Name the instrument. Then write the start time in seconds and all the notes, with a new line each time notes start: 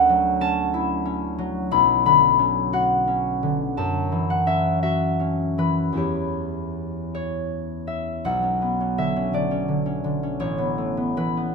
harp
Already playing: D2 C#4 F#5
0.09 F#3
0.41 C#4 A5
0.74 E4
1.05 C#4
1.38 F#3
1.71 B1 B5
2.05 D3 B5
2.39 C#4
2.73 F#4 F#5
3.07 C#4
3.43 D3
3.77 F#2 A5
4.12 E3
4.30 F#5
4.47 C#4 E5
4.83 F#4 E5
5.20 C#4
5.58 E3 B4
5.92 E2 E3 E4
5.97 G4 C#5
7.15 C#5
7.87 E5
8.25 B1 F#5
8.43 C#4
8.62 B3
8.80 C#4
8.98 D3 E5
9.16 C#4
9.33 D3 D5
9.51 C#4
9.68 D3
9.86 C#4
10.04 D3
10.23 C#4
10.40 A1 C#5
10.58 B3
10.78 A3
10.97 B3
11.17 E3 B4
11.37 B3